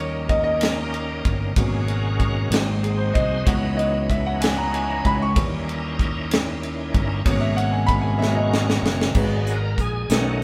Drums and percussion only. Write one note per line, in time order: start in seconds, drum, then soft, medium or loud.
0.29 kick medium
0.29 ride bell soft
0.61 snare loud
0.61 ride bell medium
0.94 ride bell soft
1.25 kick medium
1.25 ride bell soft
1.56 kick loud
1.56 ride bell medium
1.88 ride bell soft
2.20 kick medium
2.20 ride bell soft
2.52 snare loud
2.52 ride bell medium
2.84 ride bell soft
3.15 kick medium
3.15 ride bell soft
3.47 kick loud
3.47 ride bell medium
3.79 ride bell soft
4.10 kick medium
4.10 ride bell soft
4.42 snare loud
4.42 ride bell medium
4.74 ride bell soft
5.05 kick medium
5.05 ride bell soft
5.36 kick loud
5.36 ride bell medium
5.69 ride bell soft
5.99 kick medium
5.99 ride bell soft
6.31 snare loud
6.31 ride bell medium
6.63 ride bell soft
6.94 kick loud
6.94 ride bell soft
7.26 kick loud
7.26 ride bell medium
7.58 ride bell soft
7.88 kick medium
7.88 ride bell soft
8.22 snare medium
8.54 snare medium
8.70 snare medium
8.86 snare loud
9.01 snare medium
9.14 kick loud
9.14 crash medium
9.47 closed hi-hat soft
9.78 kick medium
9.78 closed hi-hat soft
10.10 snare loud
10.10 closed hi-hat medium